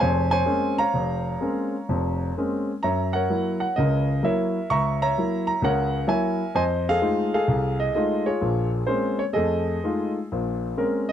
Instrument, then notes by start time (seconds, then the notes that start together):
grand piano
Already playing: G#4
0.00 F1 F2 C5 C#5 G#5
0.31 C5 C#5 G#5
0.46 G#3 A#3 C4 C#4
0.78 C#5 F5 A#5
0.94 F1
1.41 G#3 A#3 C4 C#4
1.89 F1 F2
2.37 G#3 A#3 C4 C#4
2.83 F#2 C#5 E5 A#5
3.13 A#4 C#5 F#5
3.30 F#3 A#3 E4
3.60 F#5
3.76 C#2 C#3 A#4 D#5
4.23 F#3 A#3 E4 A#4 C#5 E5
4.70 C#2 E5 A#5 C#6
5.02 C#5 E5 A#5
5.18 F#3 A#3 E4
5.47 A#5
5.62 C#2 C#3 A#4 C#5 F#5
6.07 F#3 A#3 E4 C#5 E5 G#5
6.55 F2 C5 D#5 G#5
6.89 G#4 A4 F5
7.02 G#3 A3 D#4 F4
7.34 G#4 A4 F5
7.48 C2
7.80 D#5
7.95 G#3 A3 D#4 F4 D#5
8.26 F4 G#4 C#5
8.41 A#1 A#2
8.87 G#3 A#3 C4 C#4 C5
9.19 C#5
9.33 F2 A3 G#4 A4 D#5
9.84 G#3 A3 D#4 F4
10.32 A#1 A#2
10.77 G#3 A#3 C4 C#4 A#4
11.09 D#5